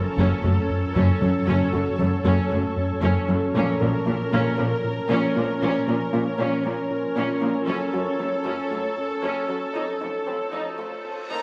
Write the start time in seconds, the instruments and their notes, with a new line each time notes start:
Already playing: ambient pad F#3 C#4 A4 C#5, viola section A4
0.18 double bass section F#1, analog synth bass F#2, cello section F#2, synth arpeggio sound F#3, viola section C#4
0.43 double bass section F#1, analog synth bass F#2, cello section F#2, viola section F#3, synth arpeggio sound A3
0.70 analog synth bass F#2
0.96 double bass section F#1, analog synth bass F#2, cello section F#2, synth arpeggio sound F#3, viola section C#4
1.21 double bass section F#1, cello section F#2, analog synth bass F#3, viola section F#3, synth arpeggio sound C#4
1.47 double bass section F#1, analog synth bass F#2, cello section F#2, synth arpeggio sound F#3, viola section C#4
1.73 double bass section F#1, analog synth bass F#2, cello section F#2, viola section F#3, synth arpeggio sound F#4
1.99 double bass section F#1, cello section F#2, analog synth bass F#3, viola section A3, synth arpeggio sound C#4
2.25 double bass section F#1, analog synth bass F#2, cello section F#2, synth arpeggio sound F#3, viola section C#4
2.51 double bass section F#1, analog synth bass F#2, cello section F#2, viola section F#3, synth arpeggio sound A3
2.77 analog synth bass F#2
3.03 double bass section F#1, analog synth bass F#2, cello section F#2, synth arpeggio sound F#3, viola section C#4
3.29 double bass section F#1, cello section F#2, analog synth bass F#3, viola section F#3, synth arpeggio sound C#4
3.54 double bass section A#1, analog synth bass A#2, cello section A#2, ambient pad F3 C#4 A#4 C#5, synth arpeggio sound A#3, viola section C#4 A#4
3.80 double bass section A#1, analog synth bass A#2, cello section A#2, viola section F3, synth arpeggio sound A#4
4.06 double bass section A#1, cello section A#2, viola section A#3, analog synth bass A#3, synth arpeggio sound F4
4.32 double bass section A#1, cello section A#2, analog synth bass A#2, synth arpeggio sound A#3, viola section C#4
4.58 double bass section A#1, cello section A#2, analog synth bass A#2, viola section F3, synth arpeggio sound C#4
4.84 analog synth bass A#2
5.10 double bass section A#1, cello section A#2, analog synth bass A#2, synth arpeggio sound A#3, viola section C#4
5.36 double bass section A#1, cello section A#2, viola section F3, analog synth bass A#3, synth arpeggio sound F4
5.62 double bass section A#1, analog synth bass A#2, cello section A#2, synth arpeggio sound A#3, viola section C#4
5.87 double bass section A#1, analog synth bass A#2, cello section A#2, viola section F3, synth arpeggio sound A#4
6.13 double bass section A#1, cello section A#2, analog synth bass A#3, viola section A#3, synth arpeggio sound F4
6.38 double bass section A#1, cello section A#2, analog synth bass A#2, synth arpeggio sound A#3, viola section C#4
6.64 double bass section A#1, cello section A#2, analog synth bass A#2, viola section F3, synth arpeggio sound C#4
6.90 analog synth bass A#2
7.16 double bass section A#1, analog synth bass A#2, cello section A#2, synth arpeggio sound A#3, viola section C#4
7.42 double bass section A#1, cello section A#2, viola section F3, analog synth bass A#3, synth arpeggio sound F4
7.67 double bass section F#1, analog synth bass F#2, cello section F#2, synth arpeggio sound F#3, ambient pad F#3 A4, viola section C#4 A4
7.93 double bass section F#1, analog synth bass F#2, cello section F#2, viola section F#3, synth arpeggio sound F#4
8.19 double bass section F#1, cello section F#2, analog synth bass F#3, viola section A3, synth arpeggio sound C#4
8.45 double bass section F#1, analog synth bass F#2, cello section F#2, synth arpeggio sound F#3, viola section C#4
8.71 double bass section F#1, analog synth bass F#2, cello section F#2, viola section F#3, synth arpeggio sound A3
8.97 analog synth bass F#2
9.23 double bass section F#1, analog synth bass F#2, cello section F#2, synth arpeggio sound F#3, viola section C#4
9.49 double bass section F#1, cello section F#2, viola section F#3, analog synth bass F#3, synth arpeggio sound C#4
9.74 double bass section F1, analog synth bass F2, cello section F2, ambient pad D#3 F4 C5, synth arpeggio sound F3, viola section D#4, reverse cymbal
10.01 double bass section F1, analog synth bass F2, cello section F2, viola section A3, synth arpeggio sound D#4
10.27 double bass section F1, cello section F2, analog synth bass F3, synth arpeggio sound C4, viola section C4
10.52 double bass section F1, analog synth bass F2, cello section F2, synth arpeggio sound F3, viola section D#4
10.78 double bass section F1, analog synth bass F2, cello section F2, synth arpeggio sound A3, viola section A3
11.04 analog synth bass F2
11.30 double bass section F1, analog synth bass F2, cello section F2, synth arpeggio sound F3, french horn section A#3, viola section D#4, violin section A#5